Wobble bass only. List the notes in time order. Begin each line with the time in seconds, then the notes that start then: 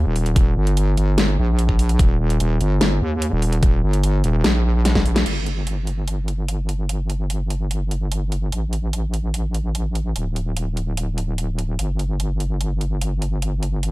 0.06 D#1
0.36 D#1
0.57 G1
0.97 G1
1.38 A#1
1.99 D#1
2.20 D#1
2.40 D#1
2.61 G1
3.01 D#2
3.32 D#1
3.63 D#1
3.83 G1
4.24 D#1
4.44 A#1
5.06 A#1
5.26 G1
8.52 A1
10.16 D1
11.79 G1